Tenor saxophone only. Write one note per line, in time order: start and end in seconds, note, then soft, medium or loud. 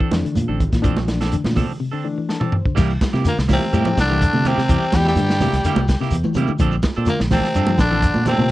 3.28 3.38 A#3 medium
3.53 3.96 C4 medium
4.01 4.49 D4 medium
4.48 4.98 C4 loud
4.96 5.07 G4 medium
5.08 5.98 G4 medium
7.09 7.20 A#3 medium
7.32 7.76 C4 medium
7.80 8.24 D4 loud
8.28 8.51 C4 medium